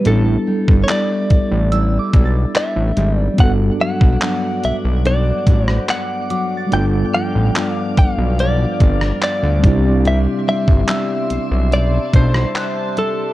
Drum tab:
HH |x---x-x-x-x---x-|x---x-x-x-x---x-|x---x-x-x-x---x-|x---x-x-x-x---x-|
CP |----x-------x---|----x-------x---|----x-------x---|----x-------x---|
SD |----------------|-----------r----|-----------r----|-----------r----|
BD |---o--o---o-----|o--o------o-----|------o---o---o-|---o------o-----|